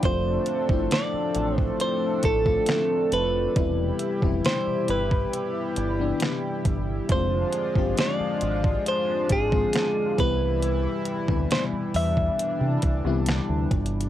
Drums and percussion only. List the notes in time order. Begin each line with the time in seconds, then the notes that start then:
0.03 kick, closed hi-hat
0.46 closed hi-hat
0.69 kick
0.91 snare, closed hi-hat
1.35 closed hi-hat
1.58 kick
1.80 closed hi-hat
2.23 kick, closed hi-hat
2.46 kick
2.66 snare, closed hi-hat
3.12 closed hi-hat
3.56 kick, closed hi-hat
3.99 closed hi-hat
4.22 kick
4.45 snare, closed hi-hat
4.88 closed hi-hat
5.11 kick
5.33 closed hi-hat
5.76 closed hi-hat
6.20 snare, closed hi-hat
6.65 kick, closed hi-hat
7.09 kick, closed hi-hat
7.53 closed hi-hat
7.75 kick
7.97 snare, closed hi-hat
8.41 closed hi-hat
8.64 kick
8.86 closed hi-hat
9.29 kick, closed hi-hat
9.52 kick
9.73 snare, closed hi-hat
10.18 kick, closed hi-hat
10.62 closed hi-hat
11.05 closed hi-hat
11.28 kick
11.51 snare, closed hi-hat
11.94 open hi-hat
12.17 kick
12.39 closed hi-hat
12.82 kick, closed hi-hat
13.26 snare, closed hi-hat
13.71 kick, closed hi-hat, open hi-hat
13.86 closed hi-hat
14.01 closed hi-hat